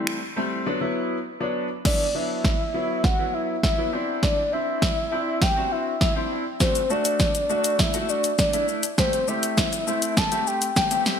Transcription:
Already playing: G3 A3 C4 E4
0.07 finger snap
0.36 G3 A3 C4
0.66 F#3 B3 D4
0.81 F#3 B3 E4
1.40 F#3 B3 D4
1.85 F#3 B3 E4 D5, kick, snare, crash
2.14 F#3 B3 D4 E5
2.44 kick, snare
2.74 F#3 B3 E4
3.04 F#5, kick, snare
3.19 F#3 B3 E4
3.34 E5
3.63 E5, kick, snare
3.78 F#3 B3 E4
3.93 C4 D4 E4
4.23 D5, kick, snare
4.52 C4 D4 E4 E5
4.82 kick, snare
5.12 C4 D4 E4
5.42 G5, kick, snare
5.56 C4 D4 F#4
5.72 E5
6.01 E5, kick, snare
6.16 C4 D4 E4
6.60 A3 D4 F#4 C5, kick, snare, shaker
6.75 closed hi-hat, shaker
6.90 A3 D4 F#4 D5, shaker
7.05 closed hi-hat, shaker
7.20 kick, snare, shaker
7.35 closed hi-hat, shaker
7.49 A3 D4 F#4, shaker
7.64 closed hi-hat, shaker
7.79 E5, kick, snare, shaker
7.94 A3 D4 F#4, closed hi-hat, shaker
8.09 D5, shaker
8.24 closed hi-hat, shaker
8.39 D5, kick, snare, shaker
8.53 A3 D4 E4, closed hi-hat, shaker
8.68 shaker
8.83 closed hi-hat, shaker
8.98 A3 C4 G4 C5, kick, snare, shaker
9.13 closed hi-hat, shaker
9.27 A3 C4 G4 E5, shaker
9.43 closed hi-hat, shaker
9.58 kick, snare, shaker
9.73 closed hi-hat, shaker
9.87 A3 C4 E4, shaker
10.02 closed hi-hat, shaker
10.17 A5, kick, snare, shaker
10.31 A3 C4 G4, closed hi-hat, shaker
10.47 G5, shaker
10.62 closed hi-hat, shaker
10.76 G5, kick, snare, shaker
10.90 A3 C4 G4, closed hi-hat, shaker
11.06 snare, shaker

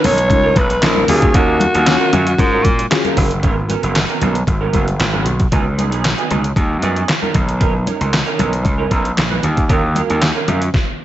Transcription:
0.03 B1 F3 C#4 D#4 A#4 C#5, open hi-hat, muted conga, high conga, low conga
0.17 muted clean electric guitar stroke, closed hi-hat
0.30 C#2 C#4 D#4 F4 A#4, muted clean electric guitar stroke, kick, closed hi-hat, muted conga, high conga
0.43 F3 C#4 D#4 A#4
0.56 B1 B4, muted clean electric guitar stroke, kick, closed hi-hat, high conga
0.70 muted clean electric guitar stroke, closed hi-hat
0.82 A#1 C#4 D#4 F4 A#4, muted clean electric guitar stroke, snare, clap, closed hi-hat, muted conga
0.96 muted clean electric guitar stroke, high conga
1.08 D#2 F#3 C#4 F4 F#4 G#4 A#4 F5, open hi-hat, muted conga, high conga, low conga
1.22 F#3 C#4 F4 C#5, kick, closed hi-hat
1.34 D#2 F#3 C#4 F4 F#4 A#4, kick, closed hi-hat, muted conga
1.60 muted clean electric guitar stroke, closed hi-hat, muted conga, high conga
1.74 D#2 F#3 C#4 F4 C#5, closed hi-hat
1.86 C#4 F4 F#4 C#5, muted clean electric guitar stroke, snare, clap, closed hi-hat
2.00 F#3 C#4 F4 A#4
2.12 F#2 F#3 C#4 F4 A#4, closed hi-hat, muted conga, high conga, low conga
2.26 muted clean electric guitar stroke, closed hi-hat
2.38 G#2 C#4 F4 F#4 A#4, muted clean electric guitar stroke, kick, closed hi-hat, high conga
2.52 F#3 C#4 F4 A#4
2.65 A#2, muted clean electric guitar stroke, kick, closed hi-hat, muted conga, high conga
2.78 muted clean electric guitar stroke, closed hi-hat
2.90 C#4 F4 F#4 G#4, muted clean electric guitar stroke, snare, clap, closed hi-hat
3.04 F#3 C#4 F4 A#4, closed hi-hat, high conga
3.17 F#1 F#3 C#4 F4 A#4, kick, open hi-hat, muted conga, low conga
3.31 muted clean electric guitar stroke, closed hi-hat
3.42 G#1 B3 C#4 F#4 A#4, kick, closed hi-hat, muted conga, low conga
3.57 muted clean electric guitar stroke
3.69 B3 C#4 F#4 A#4, closed hi-hat, high conga
3.83 F#1 B3 C#4 F#4 A#4, closed hi-hat
3.95 muted clean electric guitar stroke, snare, clap, closed hi-hat, muted conga
4.09 B3 C#4 F#4 A#4, closed hi-hat
4.21 B1 B3 C#4 F#4 A#4, closed hi-hat, muted conga, high conga, low conga
4.35 muted clean electric guitar stroke, closed hi-hat
4.47 G#1, muted clean electric guitar stroke, kick, closed hi-hat, high conga
4.61 B3 C#4 F#4 A#4
4.73 F#1 B3 C#4 F#4 A#4, kick, closed hi-hat, muted conga, high conga
4.87 muted clean electric guitar stroke, closed hi-hat
4.99 G#1, muted clean electric guitar stroke, snare, clap, closed hi-hat, muted conga
5.13 B3 C#4 F#4 B4, high conga
5.26 B1, muted clean electric guitar stroke, closed hi-hat, low conga
5.40 muted clean electric guitar stroke, kick, closed hi-hat
5.52 C#2 F#3 B3 D#4 G#4, kick, closed hi-hat, muted conga, low conga
5.66 muted clean electric guitar stroke
5.78 F#3 B3 D#4 G#4, closed hi-hat, high conga
5.92 B1 F#3 B3 D#4 G#4, closed hi-hat
6.04 muted clean electric guitar stroke, snare, clap, closed hi-hat, muted conga
6.18 F#3 B3 D#4 G#4, closed hi-hat
6.30 C#2 F#3 B3 D#4 G#4, closed hi-hat, high conga, low conga
6.44 muted clean electric guitar stroke, closed hi-hat
6.56 D#2, muted clean electric guitar stroke, kick, closed hi-hat, muted conga, high conga
6.70 muted clean electric guitar stroke
6.82 F#2 F#3 B3 D#4 G#4, closed hi-hat, muted conga, high conga
6.96 F#3 B3 D#4 G#4, closed hi-hat
7.08 muted clean electric guitar stroke, snare, clap, closed hi-hat
7.22 F#3 B3 D#4 A#4, high conga
7.34 B1, muted clean electric guitar stroke, kick, closed hi-hat, muted conga, low conga
7.48 muted clean electric guitar stroke, closed hi-hat
7.60 F3 C#4 D#4 A#4, kick, closed hi-hat, low conga
7.74 muted clean electric guitar stroke
7.86 F3 C#4 D#4 A#4, closed hi-hat, muted conga, high conga
8.00 C#2 F3 C#4 D#4 A#4, closed hi-hat
8.13 muted clean electric guitar stroke, snare, clap, closed hi-hat, muted conga
8.26 F3 C#4 D#4 A#4, closed hi-hat
8.38 B1 F3 C#4 D#4 A#4, closed hi-hat, muted conga, high conga, low conga
8.52 muted clean electric guitar stroke, closed hi-hat
8.65 C#2, muted clean electric guitar stroke, kick, closed hi-hat, muted conga, high conga
8.78 F3 C#4 D#4 A#4
8.90 B1 F3 C#4 D#4 A#4, kick, closed hi-hat, muted conga, high conga
9.05 muted clean electric guitar stroke, closed hi-hat
9.17 A#1, muted clean electric guitar stroke, snare, clap, closed hi-hat, muted conga
9.31 F3 C#4 D#4 B4, high conga
9.43 D#2, muted clean electric guitar stroke, closed hi-hat, low conga
9.57 muted clean electric guitar stroke, kick, closed hi-hat
9.69 D#2 F#3 C#4 F4 A#4, kick, closed hi-hat, muted conga, low conga
9.83 muted clean electric guitar stroke
9.95 F#3 C#4 F4 A#4, closed hi-hat, muted conga, high conga
10.09 D#2 F#3 C#4 F4 A#4, closed hi-hat
10.21 muted clean electric guitar stroke, snare, clap, closed hi-hat, muted conga
10.35 F#3 C#4 F4 A#4
10.47 F#2 F#3 C#4 F4 A#4, closed hi-hat, muted conga, high conga, low conga
10.61 muted clean electric guitar stroke, closed hi-hat
10.74 kick, snare

